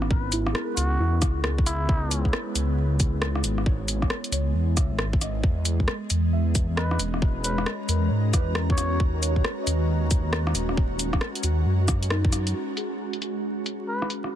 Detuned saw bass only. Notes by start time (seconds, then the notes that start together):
Already playing: G#1
0.77 C#2
0.99 E2
1.22 C#2
1.89 C#2
2.55 C#2
3.13 C#2
3.44 G#1
4.32 C#2
4.54 E2
4.77 C#2
4.90 G#1
5.43 E2
6.11 E2
6.69 E2
6.99 E1
7.88 E2
8.11 G#2
8.33 E2
9.00 D#2
9.67 D#2
10.25 D#2
10.54 D#1
11.43 D#2
11.65 F#2
12.10 F#2